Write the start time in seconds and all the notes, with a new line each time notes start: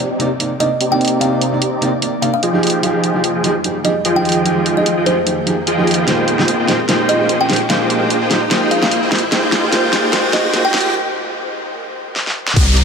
Already playing: C3 A#3 D#4 D6, riser
0.11 C4 G4 D5 D#5 A#5
0.19 C3 A#3 C4 D#4 G4 D5 D#5 A#5, closed hi-hat
0.39 C3 A#3 D#4 D5, closed hi-hat
0.59 C3 A#3 D#4 D5 D#5, closed hi-hat
0.81 C4 G4 D5 D#5 A#5, closed hi-hat
0.91 C3 A#3 D#4 D5 G5
1.01 closed hi-hat
1.05 closed hi-hat
1.08 closed hi-hat
1.20 C3 A#3 C4 D#4 G4 D5 D#5 F5 A#5, closed hi-hat
1.41 closed hi-hat
1.52 C3 A#3 D#4 D5
1.62 closed hi-hat
1.73 C4 G4 D5 D#5 A#5
1.81 C3 A#3 C4 D#4 G4 D5 D#5 A#5, closed hi-hat
2.01 C3 A#3 D#4 D5, closed hi-hat
2.21 C3 A#3 D#4 D5 F5, closed hi-hat
2.34 F5
2.43 F3 F4 G#4 D#5 G5, closed hi-hat
2.53 F3 D#4 G4 G#4
2.63 F2 D#3 G#4 G5, closed hi-hat
2.67 closed hi-hat
2.70 closed hi-hat
2.82 F3 D#4 F4 G4 G#4 D#5 G5, closed hi-hat
3.04 closed hi-hat
3.14 F3 D#4 G4 G#4
3.24 closed hi-hat
3.35 F3 F4 G#4 D#5 G5
3.43 F3 D#4 F4 G4 G#4 D#5 G5, closed hi-hat
3.64 F3 D#4 G4 G#4, closed hi-hat
3.84 F3 D#4 G4 G#4 D#5, closed hi-hat
4.05 F3 F4 G#4 D#5 G5, closed hi-hat
4.15 F3 D#4 G4 G#4 G5
4.25 closed hi-hat
4.29 closed hi-hat
4.32 closed hi-hat
4.44 F3 D#4 F4 G4 G#4 D#5 G5, closed hi-hat
4.66 closed hi-hat
4.76 F3 D#4 G4 G#4 D#5
4.86 closed hi-hat
4.97 F3 F4 G#4 D#5 G5
5.05 F3 D#4 F4 G4 G#4 C5 D#5 G5, closed hi-hat
5.25 F3 D#4 G4 G#4, closed hi-hat
5.46 F3 D#4 G4 G#4, closed hi-hat
5.67 F3 F4 G#4 D#5 G5, closed hi-hat
5.77 F3 D#4 G4 G#4
5.87 closed hi-hat
5.91 closed hi-hat
5.94 closed hi-hat
6.06 A#2 F3 G#3 A#3 D#4 F4 G4 G#4 C5 D#5 G5, snare, closed hi-hat
6.28 closed hi-hat
6.38 A#2 G#3 D#4 G4 C5, snare
6.48 closed hi-hat
6.60 A#3 F4 G#4 C5 D#5 G5
6.67 A#2 G#3 A#3 D#4 F4 G4 G#4 C5 D#5 G5, snare, closed hi-hat
6.88 A#2 G#3 A#3 D#4 F4 G4 G#4 C5 D#5 G5, snare, closed hi-hat
7.09 D#5, closed hi-hat
7.19 A#2 G#3 D#4 G4 C5
7.29 closed hi-hat
7.41 A#3 F4 G#4 C5 D#5 G5
7.48 A#2 G#3 A#3 D#4 F4 G4 G#4 C5 D#5 G5, snare, closed hi-hat
7.53 closed hi-hat
7.56 closed hi-hat
7.69 A#2 G#3 A#3 D#4 F4 G4 G#4 C5 D#5 F5 G5, snare, closed hi-hat
7.90 closed hi-hat
8.00 A#2 G#3 D#4 G4 C5
8.10 closed hi-hat
8.21 A#3 F4 G#4 C5 D#5 G5
8.29 A#2 G#3 A#3 D#4 F4 G4 G#4 C5 D#5 G5, snare, closed hi-hat
8.50 A#2 G#3 A#3 D#4 F4 G4 G#4 C5 D#5 G5, snare, closed hi-hat
8.71 F5, closed hi-hat
8.81 A#2 G#3 D#4 G4 C5 F5, snare
8.91 closed hi-hat
9.03 A#3 F4 G#4 C5 D#5 G5
9.11 G#2 A#2 G#3 A#3 D#4 F4 G4 G#4 A#4 C5 D#5 G5, snare, closed hi-hat
9.15 closed hi-hat
9.19 closed hi-hat
9.31 A#2 G#3 A#3 D#4 F4 G4 G#4 C5 D#5 G5, snare, closed hi-hat
9.52 snare, closed hi-hat
9.62 A#2 G#3 D#4 G4 C5
9.71 A#2 G#3 A#3 D#4 F4 G4 G#4 C5 D#5 G5, snare, closed hi-hat
9.93 snare, closed hi-hat
10.03 A#2 G#3 D#4 G4 C5
10.12 A#2 G#3 A#3 D#4 F4 G4 G#4 C5 D#5 G5, snare, closed hi-hat
10.33 D#5, snare, closed hi-hat
10.44 A#2 G#3 D#4 G4 C5
10.53 A#2 G#3 A#3 D#4 F4 G4 G#4 C5 D#5 G5, snare, closed hi-hat
10.65 G5
10.74 snare, closed hi-hat
10.78 closed hi-hat
10.81 A#2, closed hi-hat
10.85 G#3 D#4 G4 C5
12.16 snare
12.27 snare
12.47 snare
12.56 C2 C3 A#3 C4 D#4 G4 D5 D#5 A#5, kick, closed hi-hat, crash, downlifter
12.77 closed hi-hat